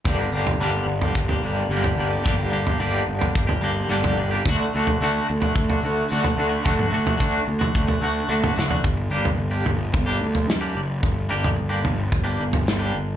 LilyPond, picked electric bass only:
\new Staff \with { instrumentName = "Picked electric bass" } { \clef bass \time 4/4 \key g \minor \tempo 4 = 109 g,,8 g,,8 g,,8 g,,8 g,,8 g,,8 g,,8 g,,8 | g,,8 g,,8 g,,8 g,,8 g,,8 g,,8 g,,8 g,,8 | d,8 d,8 d,8 d,8 d,8 d,8 d,8 d,8 | d,8 d,8 d,8 d,8 d,8 d,8 d,8 fis,,8 |
g,,8 g,,8 g,,8 g,,8 g,,8 d,8 fis,8 fis,,8 | g,,8 g,,8 g,,8 g,,8 g,,8 g,,8 g,,8 g,,8 | }